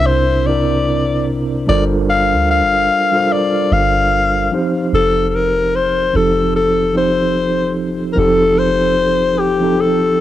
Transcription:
Already playing: C2 C3 C4 D4 E4 A#4 C5
0.06 C5
0.45 C3 C4 D4 E4 D5
0.49 A#4
1.67 G1 G3 D4 F4 A4 A#4 D5
1.71 C5
2.10 F5
2.33 D2
2.51 F5
2.62 G1
3.12 G3 D4 F4 A4 A#4 C5
3.32 D5
3.72 G1 F5
4.50 F3 C4 D#4 G4 C5
4.93 F1 A4
5.29 A4
5.35 A#4
5.76 C5
6.12 F1 F3 C4 D#4 G4 A4
6.16 A4
6.56 A4
6.94 F3 C4 D#4 G4 C5
6.98 C5
8.13 F3 C4 A#4
8.17 F1 D#4 G4 A4
8.59 C5
9.39 G4
9.60 F3 C4 D#4 G4
9.64 A4
9.80 A4

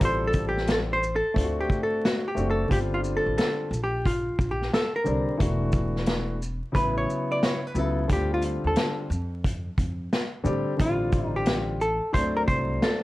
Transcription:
0.00 A1 G3 C4 F4 A4, kick, closed hi-hat
0.05 C5
0.27 A4
0.33 kick, closed hi-hat, shaker
0.49 G4
0.57 snare
0.67 snare, closed hi-hat
0.72 A4
0.93 C5
1.03 shaker
1.16 A4
1.34 D2 A3 C4 D4 F4, kick, closed hi-hat
1.44 F#4
1.61 G4
1.70 kick, shaker
1.83 A4
2.05 F#4, snare, closed hi-hat
2.28 G4
2.35 F#1 A3 C4 D4 F#4, shaker
2.51 A4
2.68 G1 D3 G3 C4 F4, kick, closed hi-hat
2.72 G4
2.94 F4
3.04 shaker
3.17 A4
3.26 A1
3.38 A4, snare, closed hi-hat
3.71 A#1, shaker
3.84 G4
4.05 F4, kick, closed hi-hat
4.39 A#1, kick, shaker
4.51 G4
4.62 snare
4.74 A4, snare, closed hi-hat
4.96 A#4
5.04 C2 D3 G3 C4 D4, shaker
5.37 E1 E3 A3 D4 F#4, kick, closed hi-hat
5.72 kick, closed hi-hat, shaker
5.96 snare
6.06 snare, closed hi-hat
6.42 shaker
6.72 A1 C#3 F#3 B3 E4 B4, kick, closed hi-hat
6.98 C#5
7.10 shaker
7.32 D5
7.43 C#5, snare, closed hi-hat
7.67 B4
7.74 C#2 C#3 F#3 B3 E4, shaker
7.79 A4
8.08 D2 D3 G3 C4 F4, kick, closed hi-hat
8.13 G4
8.34 F4
8.42 closed hi-hat, shaker
8.64 D#2 A4
8.76 snare, closed hi-hat
9.10 F2, shaker
9.44 kick, closed hi-hat
9.78 F2, kick, closed hi-hat, shaker
10.13 snare, closed hi-hat
10.44 A2 D3 G3 C4 G4, shaker
10.77 A1 D3 G3 C4 E4, kick, closed hi-hat
10.81 F4
10.87 F4
11.12 kick, closed hi-hat, shaker
11.36 G4
11.46 snare, closed hi-hat
11.81 A4, shaker
12.13 D2 F#3 A3 C4 D4 C5, kick, closed hi-hat
12.37 A#4
12.48 C2 C5, kick, closed hi-hat, shaker
12.82 A4, snare, closed hi-hat

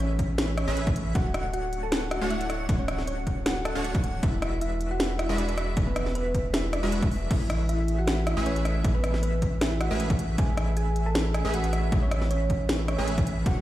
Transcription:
Already playing: A1 A3 C#4 G#4 B4 E5
0.00 C#4 C#5
0.19 kick, closed hi-hat
0.38 C#4 C#5, snare, closed hi-hat
0.57 C#4 C#5, cross-stick, closed hi-hat
0.68 A1 A3 C#4 G#4 B4 E5
0.77 closed hi-hat
0.87 kick, closed hi-hat
0.96 closed hi-hat
1.15 D1 A3 D4 F#4 C#5 F#5, kick, closed hi-hat
1.34 cross-stick, closed hi-hat
1.54 F#4 F#5, closed hi-hat
1.73 closed hi-hat
1.83 A4 A5
1.92 snare, closed hi-hat
2.11 F#4 F#5, cross-stick, closed hi-hat
2.21 D1 A3 D4 F#4 C#5 F#5
2.30 E4 E5, closed hi-hat
2.41 closed hi-hat
2.50 cross-stick, closed hi-hat
2.69 D1 A3 D4 F#4 C#5 F#5, kick, closed hi-hat
2.79 C#4 C#5
2.88 cross-stick, closed hi-hat
2.98 snare
3.07 C#4 C#5, closed hi-hat
3.27 kick, closed hi-hat
3.46 F#4 F#5, snare, closed hi-hat
3.65 A4 A5, cross-stick, closed hi-hat
3.75 D1 A3 D4 F#4 C#5 F#5
3.84 closed hi-hat
3.95 kick, closed hi-hat
4.04 closed hi-hat
4.23 E1 G#3 D4 E4 F#4 B4 E5, kick, closed hi-hat
4.42 cross-stick, closed hi-hat
4.61 E4 E5, closed hi-hat
4.81 closed hi-hat
4.91 F#4 F#5
5.00 snare, closed hi-hat
5.19 E4 E5, cross-stick, closed hi-hat
5.29 E1 G#3 D4 F#4 B4 E5
5.38 D4 D5, closed hi-hat
5.49 closed hi-hat
5.58 cross-stick, closed hi-hat
5.77 E1 G#3 D4 F#4 B4 E5, kick, closed hi-hat
5.87 B3 B4
5.96 cross-stick, closed hi-hat
6.06 snare
6.15 B3 B4, closed hi-hat
6.35 kick, closed hi-hat
6.54 E4 E5, snare, closed hi-hat
6.73 D4 D5, cross-stick, closed hi-hat
6.83 E1 G#3 D4 F#4 B4 E5
6.92 closed hi-hat
7.02 kick, closed hi-hat
7.11 open hi-hat
7.30 A1 A3 C#4 E4 G#4 B4 E5, kick, closed hi-hat, crash
7.50 cross-stick, closed hi-hat
7.69 E4 E5, closed hi-hat
7.88 closed hi-hat
7.99 F#4 F#5
8.07 snare, closed hi-hat
8.27 E4 E5, cross-stick, closed hi-hat
8.37 A1 A3 C#4 G#4 B4 E5
8.46 C#4 C#5, closed hi-hat
8.56 closed hi-hat
8.65 cross-stick, closed hi-hat
8.84 A1 A3 C#4 G#4 B4 E5, kick, closed hi-hat
8.95 B3 B4
9.04 cross-stick, closed hi-hat
9.14 snare
9.23 B3 B4, closed hi-hat
9.42 kick, closed hi-hat
9.61 E4 E5, snare, closed hi-hat
9.81 F#4 F#5, cross-stick, closed hi-hat
9.91 A1 A3 C#4 G#4 B4 E5
10.00 closed hi-hat
10.10 kick, closed hi-hat
10.19 closed hi-hat
10.38 A1 A3 C#4 G#4 B4 E5 G#5, kick, closed hi-hat
10.57 cross-stick, closed hi-hat
10.77 G#4 G#5, closed hi-hat
10.96 closed hi-hat
11.06 A4 A5
11.15 snare, closed hi-hat
11.34 G#4 G#5, cross-stick, closed hi-hat
11.45 A1 A3 C#4 G#4 B4 E5
11.54 F#4 F#5, closed hi-hat
11.64 closed hi-hat
11.73 cross-stick, closed hi-hat
11.92 A1 A3 C#4 G#4 B4 E5, kick, closed hi-hat
12.02 C#4 C#5
12.11 cross-stick, closed hi-hat
12.22 snare
12.31 C#4 C#5, closed hi-hat
12.50 kick, closed hi-hat
12.69 C#4 C#5, snare, closed hi-hat
12.88 C#4 C#5, cross-stick, closed hi-hat
12.98 A1 A3 C#4 G#4 B4 E5
13.08 closed hi-hat
13.18 kick, closed hi-hat
13.27 closed hi-hat
13.46 D1 A3 D4 F#4 C#5 F#5, kick, closed hi-hat, ride

